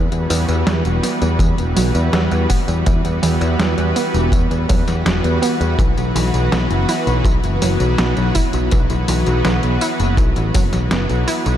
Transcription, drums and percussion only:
0.12 closed hi-hat soft
0.12 tambourine soft
0.30 open hi-hat medium
0.30 tambourine medium
0.49 closed hi-hat soft
0.49 tambourine soft
0.67 snare loud
0.67 closed hi-hat medium
0.67 tambourine soft
0.85 closed hi-hat soft
0.85 tambourine soft
1.03 snare soft
1.03 open hi-hat medium
1.03 tambourine medium
1.22 closed hi-hat soft
1.22 tambourine soft
1.39 kick loud
1.39 closed hi-hat medium
1.39 tambourine soft
1.58 closed hi-hat soft
1.58 tambourine soft
1.77 open hi-hat medium
1.77 tambourine medium
1.95 closed hi-hat soft
1.95 tambourine soft
2.13 snare loud
2.13 closed hi-hat medium
2.13 tambourine soft
2.31 closed hi-hat soft
2.31 tambourine soft
2.50 kick medium
2.50 open hi-hat medium
2.50 tambourine medium
2.68 closed hi-hat soft
2.68 tambourine soft
2.86 kick loud
2.86 closed hi-hat medium
2.86 tambourine soft
3.05 closed hi-hat soft
3.05 tambourine soft
3.23 open hi-hat medium
3.23 tambourine medium
3.41 closed hi-hat soft
3.41 tambourine soft
3.60 snare loud
3.60 closed hi-hat medium
3.60 tambourine soft
3.78 closed hi-hat soft
3.78 tambourine soft
3.96 open hi-hat medium
3.96 tambourine medium
4.14 closed hi-hat soft
4.14 tambourine soft
4.32 kick loud
4.32 closed hi-hat medium
4.32 tambourine soft
4.51 closed hi-hat soft
4.51 tambourine soft
4.69 kick loud
4.69 open hi-hat medium
4.69 tambourine medium
4.88 snare soft
4.88 closed hi-hat soft
4.88 tambourine soft
5.06 snare loud
5.06 closed hi-hat medium
5.06 tambourine soft
5.24 closed hi-hat soft
5.24 tambourine soft
5.43 open hi-hat medium
5.43 tambourine medium
5.61 closed hi-hat soft
5.61 tambourine soft
5.79 kick loud
5.79 closed hi-hat medium
5.79 tambourine soft
5.98 closed hi-hat soft
5.98 tambourine soft
6.16 open hi-hat medium
6.16 tambourine medium
6.34 closed hi-hat soft
6.34 tambourine soft
6.52 snare loud
6.52 closed hi-hat medium
6.52 tambourine soft
6.71 closed hi-hat soft
6.71 tambourine soft
6.89 snare soft
6.89 open hi-hat medium
6.89 tambourine medium
7.07 closed hi-hat soft
7.07 tambourine soft
7.25 kick loud
7.25 closed hi-hat medium
7.25 tambourine soft
7.44 closed hi-hat soft
7.44 tambourine soft
7.62 open hi-hat medium
7.62 tambourine medium
7.80 closed hi-hat soft
7.80 tambourine soft
7.98 snare loud
7.98 closed hi-hat medium
7.98 tambourine soft
8.17 closed hi-hat soft
8.17 tambourine soft
8.35 kick medium
8.35 open hi-hat medium
8.35 tambourine medium
8.53 closed hi-hat soft
8.53 tambourine soft
8.71 kick loud
8.71 closed hi-hat medium
8.71 tambourine soft
8.90 closed hi-hat soft
8.90 tambourine soft
9.08 open hi-hat medium
9.08 tambourine medium
9.26 closed hi-hat soft
9.26 tambourine soft
9.45 snare loud
9.45 closed hi-hat medium
9.45 tambourine soft
9.63 closed hi-hat soft
9.63 tambourine soft
9.81 open hi-hat medium
9.81 tambourine medium
10.00 closed hi-hat soft
10.00 tambourine soft
10.17 kick loud
10.17 closed hi-hat medium
10.17 tambourine soft
10.36 closed hi-hat soft
10.36 tambourine soft
10.54 kick loud
10.54 open hi-hat medium
10.54 tambourine medium
10.73 snare soft
10.73 closed hi-hat soft
10.73 tambourine soft
10.91 snare loud
10.91 closed hi-hat medium
10.91 tambourine soft
11.09 closed hi-hat soft
11.09 tambourine soft
11.28 open hi-hat medium
11.28 tambourine medium
11.46 closed hi-hat soft
11.46 tambourine soft

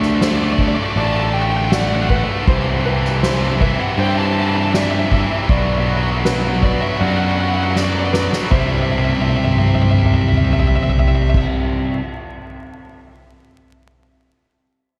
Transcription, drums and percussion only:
0.02 snare soft
0.21 snare loud
0.21 crash loud
0.59 kick medium
0.59 crash medium
0.96 crash medium
1.34 crash medium
1.72 snare loud
1.72 crash loud
2.10 kick loud
2.10 crash medium
2.48 kick loud
2.48 crash medium
2.85 crash medium
3.05 snare soft
3.23 snare loud
3.23 crash loud
3.61 kick medium
3.61 crash medium
3.98 crash loud
4.37 crash medium
4.74 snare loud
4.74 crash medium
5.11 kick medium
5.11 crash medium
5.49 kick loud
5.49 crash medium
5.88 crash medium
6.25 snare loud
6.25 crash medium
6.63 kick medium
6.63 crash medium
7.01 crash loud
7.38 crash medium
7.76 snare medium
8.14 snare medium
8.33 snare loud
8.51 kick loud
8.51 crash medium
8.90 high tom soft
8.99 high tom soft
9.09 high tom medium
9.18 high tom medium
9.27 high tom medium
9.37 high tom medium
9.46 mid tom medium
9.56 mid tom medium
9.65 mid tom medium
9.74 mid tom medium
9.84 mid tom medium
9.93 mid tom medium
10.03 mid tom medium
10.13 mid tom medium
10.22 mid tom medium
10.32 mid tom medium
10.41 mid tom medium
10.50 mid tom medium
10.59 floor tom medium
10.69 floor tom medium
10.78 floor tom medium
10.88 floor tom medium
10.97 floor tom medium
11.34 kick loud
11.34 crash loud

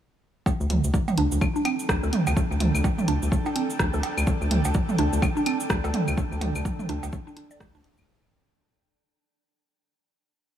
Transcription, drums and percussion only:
0.46 kick loud
0.46 cowbell medium
0.46 cabasa medium
0.61 cabasa soft
0.70 closed hi-hat medium
0.70 mid tom medium
0.84 cabasa medium
0.94 kick loud
0.94 cabasa medium
1.08 mid tom medium
1.08 cowbell medium
1.08 cabasa soft
1.18 closed hi-hat medium
1.32 cabasa medium
1.41 kick loud
1.41 cabasa medium
1.41 claves medium
1.56 cabasa soft
1.65 closed hi-hat medium
1.65 cowbell medium
1.65 claves medium
1.79 cabasa medium
1.89 kick loud
1.89 cross-stick loud
1.89 cabasa medium
2.03 cabasa soft
2.13 closed hi-hat medium
2.13 mid tom medium
2.27 cowbell medium
2.27 cabasa medium
2.27 claves medium
2.37 kick loud
2.37 cabasa medium
2.52 cabasa soft
2.60 closed hi-hat medium
2.60 mid tom medium
2.75 cabasa medium
2.75 claves medium
2.84 kick loud
2.84 cowbell medium
2.84 cabasa medium
2.98 mid tom medium
2.98 cabasa soft
3.08 closed hi-hat medium
3.23 cabasa medium
3.32 kick loud
3.32 cabasa medium
3.46 cowbell medium
3.46 cabasa soft
3.56 closed hi-hat medium
3.70 cabasa medium
3.79 kick loud
3.79 cross-stick loud
3.79 cabasa medium
3.94 cabasa soft
4.03 closed hi-hat medium
4.03 cowbell medium
4.18 cabasa medium
4.18 claves medium
4.27 kick loud
4.27 cabasa medium
4.42 cabasa soft
4.51 closed hi-hat medium
4.51 mid tom medium
4.65 cowbell medium
4.65 cabasa medium
4.74 kick loud
4.74 cabasa medium
4.89 mid tom medium
4.89 cabasa soft
4.98 closed hi-hat medium
5.13 cabasa medium
5.22 kick loud
5.22 cowbell medium
5.22 cabasa medium
5.22 claves medium
5.37 cabasa soft
5.46 closed hi-hat medium
5.46 claves medium
5.60 cabasa medium
5.70 kick loud
5.70 cross-stick loud
5.70 cabasa medium
5.84 cowbell medium
5.84 cabasa soft
5.94 closed hi-hat medium
5.94 mid tom loud
6.08 cabasa medium
6.08 claves medium
6.18 kick loud
6.18 cabasa medium
6.32 cabasa soft
6.41 closed hi-hat medium
6.41 mid tom medium
6.41 cowbell medium
6.55 cabasa medium
6.55 claves medium
6.65 kick loud
6.65 cabasa medium
6.79 mid tom medium
6.79 cabasa soft
6.89 closed hi-hat loud
7.03 cowbell medium
7.03 cabasa medium
7.13 kick loud
7.13 cabasa medium
7.28 cabasa soft
7.37 closed hi-hat medium
7.51 cabasa medium
7.60 kick loud
7.60 cross-stick loud
7.60 cowbell medium
7.60 cabasa medium
7.75 cabasa soft
7.84 closed hi-hat medium
7.97 cabasa medium
7.97 claves medium

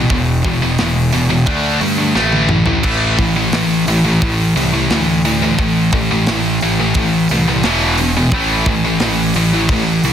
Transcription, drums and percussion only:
0.10 kick loud
0.10 open hi-hat medium
0.45 kick medium
0.45 open hi-hat medium
0.78 snare loud
0.78 open hi-hat medium
1.12 open hi-hat medium
1.46 kick loud
1.46 open hi-hat medium
1.81 open hi-hat medium
2.16 snare medium
2.32 high tom medium
2.49 mid tom medium
2.66 floor tom medium
2.83 kick loud
2.83 crash loud
3.19 kick medium
3.19 open hi-hat medium
3.53 snare loud
3.53 open hi-hat medium
3.87 open hi-hat medium
4.22 kick loud
4.57 open hi-hat medium
4.90 snare loud
4.90 open hi-hat medium
5.25 open hi-hat medium
5.59 kick loud
5.59 open hi-hat medium
5.92 kick medium
5.92 open hi-hat medium
6.27 snare loud
6.27 open hi-hat medium
6.61 open hi-hat medium
6.94 kick loud
6.94 open hi-hat medium
7.29 open hi-hat medium
7.63 snare loud
7.63 open hi-hat medium
7.97 open hi-hat medium
8.31 kick loud
8.31 open hi-hat medium
8.66 kick medium
9.00 snare loud
9.00 open hi-hat medium
9.34 open hi-hat medium
9.69 kick loud
9.69 open hi-hat medium
10.04 open hi-hat medium

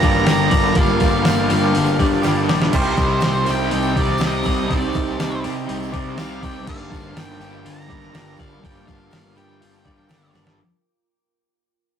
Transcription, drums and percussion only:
0.03 kick medium
0.03 open hi-hat medium
0.15 snare soft
0.26 snare loud
0.26 open hi-hat medium
0.26 tambourine loud
0.51 kick medium
0.51 open hi-hat medium
0.51 tambourine medium
0.65 tambourine soft
0.75 kick loud
0.75 open hi-hat loud
0.75 tambourine soft
0.89 tambourine soft
1.00 kick loud
1.00 open hi-hat medium
1.00 tambourine medium
1.25 snare loud
1.25 open hi-hat medium
1.25 tambourine loud
1.38 snare soft
1.38 tambourine soft
1.50 open hi-hat medium
1.50 tambourine medium
1.75 open hi-hat loud
1.87 tambourine medium
1.99 kick medium
1.99 open hi-hat medium
2.12 snare soft
2.12 tambourine soft
2.23 snare medium
2.23 open hi-hat medium
2.23 tambourine loud
2.37 tambourine soft
2.49 snare loud
2.49 open hi-hat medium
2.49 tambourine medium
2.61 snare loud
2.61 tambourine soft
2.73 kick loud
2.73 crash loud
2.86 tambourine soft
2.97 kick medium
2.97 open hi-hat medium
2.97 tambourine medium
3.10 tambourine soft
3.21 snare loud
3.21 open hi-hat medium
3.21 tambourine loud
3.34 tambourine soft
3.46 open hi-hat medium
3.46 tambourine medium
3.70 open hi-hat medium
3.70 tambourine soft
3.83 tambourine medium
3.96 kick loud
3.96 open hi-hat medium
4.10 snare soft
4.18 snare loud
4.18 open hi-hat medium
4.18 tambourine loud
4.43 kick medium
4.43 open hi-hat medium
4.43 tambourine medium
4.70 kick loud
4.70 open hi-hat loud
4.83 tambourine soft
4.93 kick medium
4.93 open hi-hat medium
4.93 tambourine medium
5.07 tambourine soft
5.20 snare loud
5.20 open hi-hat medium
5.20 tambourine loud
5.44 open hi-hat medium
5.44 tambourine medium
5.69 open hi-hat loud
5.83 tambourine medium
5.94 kick medium
5.94 open hi-hat medium
6.18 snare loud
6.18 open hi-hat medium
6.18 tambourine loud
6.43 kick medium
6.43 open hi-hat medium
6.43 tambourine medium
6.57 tambourine soft
6.67 kick loud
6.67 crash loud
6.82 tambourine soft
6.92 kick medium
6.92 open hi-hat medium
6.92 tambourine medium
7.05 tambourine soft
7.17 snare loud
7.17 open hi-hat medium
7.17 tambourine loud
7.41 open hi-hat medium
7.41 tambourine medium
7.65 open hi-hat medium
7.65 tambourine soft
7.90 kick medium
7.90 open hi-hat medium
8.03 snare soft
8.14 snare loud
8.14 open hi-hat medium
8.14 tambourine medium
8.37 kick medium
8.37 open hi-hat medium
8.37 tambourine medium
8.62 kick loud
8.62 open hi-hat medium
8.62 tambourine soft
8.88 kick medium
8.88 open hi-hat medium
8.88 tambourine medium
9.11 snare loud
9.11 open hi-hat medium
9.11 tambourine medium
9.26 snare soft
9.36 open hi-hat medium
9.36 tambourine medium
9.62 open hi-hat loud
9.72 tambourine medium
9.85 kick medium
9.85 open hi-hat medium
9.99 snare soft
10.09 snare loud
10.09 open hi-hat medium
10.09 tambourine loud
10.34 snare medium
10.34 open hi-hat medium
10.34 tambourine medium
10.47 snare loud

